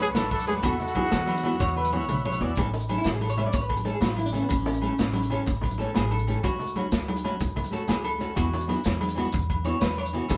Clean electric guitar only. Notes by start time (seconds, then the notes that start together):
0.00 B4
0.32 A4
0.47 B4
0.63 A4
0.96 G#4
1.12 A4
1.29 muted clean electric guitar stroke
1.60 C#5
1.76 B4
1.93 C#5
2.25 C#5
2.42 D5
2.98 E4
3.06 F#4
3.14 G#4
3.21 A4
3.30 C#5
3.38 E5
3.46 D5
3.54 C#5
3.62 B4
3.69 A4
3.77 muted clean electric guitar stroke
3.85 A4
3.93 G#4
4.02 F#4
4.10 F4
4.17 E4
4.26 D4
4.34 C#4
4.43 B3
4.50 C#4
5.79 A4
5.96 G#4
6.11 A4
6.44 F#4
7.73 A4
7.88 G#4
8.04 A4
8.36 F#4
9.65 C#5
9.81 B4
9.98 C#5
10.30 A4